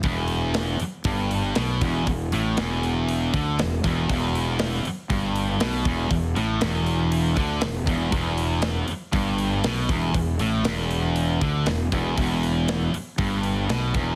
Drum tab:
HH |oooooooo|oooooooo|oooooooo|oooooooo|
SD |--o---o-|--o---o-|--o---o-|--o---o-|
BD |o---o--o|o----o-o|o---o--o|o----o-o|

HH |oooooooo|oooooooo|oooooooo|
SD |--o---o-|--o---o-|--o---o-|
BD |o---o--o|o----o-o|o---o--o|